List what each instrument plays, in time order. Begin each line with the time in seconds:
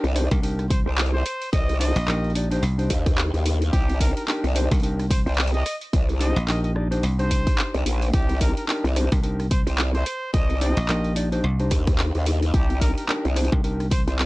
0.04 wobble bass C2, open hi-hat
0.15 clean electric guitar D4 D#4 G4 C5, cross-stick, open hi-hat
0.31 slap bass C2, clean electric guitar D4 D#4 G4 A#4, kick, open hi-hat
0.42 clean electric guitar D4 D#4 G4 A#4, open hi-hat
0.59 cross-stick, open hi-hat
0.69 trumpet C5, kick, open hi-hat
0.86 wobble bass C2, trumpet C5
0.98 clap, open hi-hat
1.06 open hi-hat
1.14 trumpet C5
1.26 cross-stick, open hi-hat
1.42 open hi-hat
1.53 wobble bass C2, trumpet D#5, kick, open hi-hat
1.69 open hi-hat
1.79 clean electric guitar D4 D#4 G4 C5, trumpet D#5, open hi-hat
1.96 slap bass A#1, open hi-hat
2.07 slap bass A#1, clean electric guitar D4 D#4 G4 A#4, clap, open hi-hat
2.24 open hi-hat
2.30 open hi-hat
2.35 clean electric guitar D4 D#4 G4 D5, open hi-hat
2.51 clean electric guitar D4 D#4 G4 C5, open hi-hat
2.62 slap bass C2, open hi-hat
2.78 clean electric guitar D4 D#4 G4 C5, open hi-hat
2.90 wobble bass D#2, kick, open hi-hat
3.06 kick, cross-stick, open hi-hat
3.18 clap, open hi-hat
3.34 wobble bass D#2, open hi-hat
3.46 open hi-hat
3.62 open hi-hat
3.72 wobble bass C2, trumpet G4, kick, open hi-hat
3.89 open hi-hat
4.00 clean electric guitar D4 D#4 G4 A#4, trumpet A#4, kick, open hi-hat
4.16 trumpet A#4, open hi-hat
4.28 clean electric guitar D4 D#4 G4 A#4, clap, open hi-hat
4.44 wobble bass C2, open hi-hat
4.55 clean electric guitar D4 D#4 G4 C5, open hi-hat
4.71 slap bass C2, clean electric guitar D4 D#4 G4 A#4, kick, open hi-hat
4.74 open hi-hat
4.80 clean electric guitar D4 D#4 A#4, open hi-hat
4.83 clean electric guitar G4, open hi-hat
4.99 cross-stick, open hi-hat
5.10 trumpet C5, kick, open hi-hat
5.26 wobble bass C2, trumpet C5, open hi-hat
5.34 open hi-hat
5.38 clap, open hi-hat
5.44 open hi-hat
5.47 open hi-hat
5.54 trumpet D#5, open hi-hat
5.66 cross-stick, open hi-hat
5.81 open hi-hat
5.93 wobble bass C2, kick, open hi-hat
6.09 open hi-hat
6.20 clean electric guitar D4 D#4 G4 C5, trumpet D#5, open hi-hat
6.36 slap bass A#1, open hi-hat
6.47 slap bass A#1, clean electric guitar D4 D#4 G4 A#4, trumpet D#5, clap, open hi-hat
6.64 trumpet D#5, open hi-hat
6.75 clean electric guitar D4 D#4 G4 D5, cross-stick
6.91 clean electric guitar D4 D#4 G4 C5, open hi-hat
7.03 slap bass C2, open hi-hat
7.19 clean electric guitar D4 D#4 G4 C5, trumpet C5, open hi-hat
7.31 kick, open hi-hat
7.47 kick, open hi-hat
7.58 clap, open hi-hat
7.74 wobble bass C2, open hi-hat
7.86 wobble bass A#1, open hi-hat
8.02 open hi-hat
8.13 wobble bass C2, trumpet G4, kick, open hi-hat
8.29 open hi-hat
8.40 clean electric guitar D4 D#4 G4 A#4, trumpet A#4, kick, open hi-hat
8.57 trumpet A#4, open hi-hat
8.68 clean electric guitar D4 D#4 G4 A#4, clap, open hi-hat
8.84 wobble bass C2, open hi-hat
8.96 clean electric guitar D4 D#4 G4 C5, cross-stick, open hi-hat
9.12 slap bass C2, clean electric guitar D4 D#4 G4 A#4, kick, open hi-hat
9.23 clean electric guitar D4 D#4 G4 A#4, open hi-hat
9.40 cross-stick, open hi-hat
9.51 trumpet C5, kick, open hi-hat
9.67 wobble bass C2, trumpet C5, open hi-hat
9.78 clap, open hi-hat
9.95 trumpet C5, open hi-hat
10.06 cross-stick, open hi-hat
10.34 wobble bass C2, trumpet D#5, kick, open hi-hat
10.50 open hi-hat
10.61 clean electric guitar D4 D#4 G4 C5, trumpet D#5, open hi-hat
10.77 slap bass A#1, open hi-hat
10.88 slap bass A#1, clean electric guitar D4 D#4 G4 A#4, clap, open hi-hat
11.04 open hi-hat
11.15 clean electric guitar D4 D#4 G4 D5, open hi-hat
11.32 clean electric guitar D4 D#4 G4 C5, open hi-hat
11.44 slap bass C2
11.60 clean electric guitar D4 D#4 G4 C5, open hi-hat
11.71 wobble bass D#2, kick, open hi-hat
11.87 kick, cross-stick, open hi-hat
11.99 clap, open hi-hat
12.15 wobble bass D#2, open hi-hat
12.26 open hi-hat
12.42 open hi-hat
12.54 wobble bass C2, trumpet G4, kick, open hi-hat
12.70 open hi-hat
12.81 clean electric guitar D4 D#4 G4 A#4, trumpet A#4, kick, open hi-hat
12.98 trumpet A#4, open hi-hat
13.08 clean electric guitar D4 D#4 G4 A#4, clap, open hi-hat
13.25 wobble bass C2, open hi-hat
13.36 clean electric guitar D4 D#4 G4 C5, cross-stick, open hi-hat
13.45 open hi-hat
13.52 slap bass C2, clean electric guitar D4 D#4 G4 A#4, kick
13.64 clean electric guitar D4 D#4 G4 A#4, open hi-hat
13.80 cross-stick, open hi-hat
13.91 trumpet C5, kick, open hi-hat
14.07 wobble bass C2, trumpet C5, open hi-hat
14.19 clap, open hi-hat